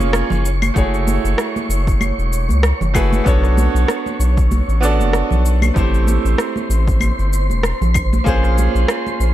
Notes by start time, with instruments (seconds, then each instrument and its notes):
Already playing: grand piano A#3 C#4 F4 G#4 C#5, synth texture C#5 C#6
0.00 analog synth bass F1, high conga, cabasa
0.13 cross-stick, cabasa
0.30 analog synth bass F#1, low conga, cabasa
0.45 cabasa
0.62 high conga, cabasa, claves
0.74 analog synth bass F#1, grand piano A3 E4 F#4 G#4, kick, cabasa
0.78 grand piano C#5
0.94 cabasa
1.07 high conga, cabasa
1.24 analog synth bass F#1, cabasa
1.38 cross-stick, cabasa
1.56 high conga, cabasa
1.69 analog synth bass F#1, cabasa
1.87 kick, cabasa
2.01 high conga, cabasa, claves
2.18 analog synth bass E1, cabasa
2.33 cabasa
2.49 analog synth bass C#2, high conga, cabasa
2.63 cross-stick, cabasa
2.81 analog synth bass F#1, low conga, cabasa
2.94 grand piano A3 E4 F#4 G#4 B4, kick, cabasa, claves
3.13 high conga, cabasa
3.24 analog synth bass B1, grand piano B3 D4 F#4 A4, kick, cabasa
3.28 grand piano C#5
3.43 cross-stick, cabasa
3.57 high conga, cabasa
3.74 analog synth bass B1, cabasa
3.88 cross-stick, cabasa
4.06 high conga, cabasa
4.19 analog synth bass B1, cabasa
4.37 kick, cabasa
4.51 high conga, cabasa
4.68 analog synth bass A1, cabasa
4.81 grand piano B3 D4 F#4 A4, cabasa
4.85 grand piano D5
5.00 analog synth bass F#1, high conga, cabasa
5.13 cross-stick, cabasa
5.31 analog synth bass B1, low conga, cabasa
5.45 cabasa
5.62 high conga, cabasa, claves
5.74 analog synth bass A1, grand piano A3 C4 E4 G4, synth texture C5 C6, kick, cabasa
5.78 grand piano C5
5.94 cabasa
6.07 high conga, cabasa
6.25 analog synth bass A1, cabasa
6.38 cross-stick, cabasa
6.56 high conga, cabasa
6.70 analog synth bass A1, cabasa
6.87 kick, cabasa
7.00 high conga, cabasa, claves
7.19 analog synth bass G1, cabasa
7.33 cabasa
7.50 analog synth bass E1, high conga, cabasa
7.63 cross-stick, cabasa
7.81 analog synth bass A#1, low conga, cabasa
7.94 kick, cabasa, claves
8.13 high conga, cabasa
8.24 analog synth bass A#1, grand piano A#3 C#4 F4 G#4, kick, cabasa
8.28 grand piano C5
8.43 cross-stick, cabasa
8.58 high conga, cabasa
8.75 analog synth bass A#1, cabasa
8.88 cross-stick, cabasa
9.07 high conga, cabasa
9.20 analog synth bass A#1, cabasa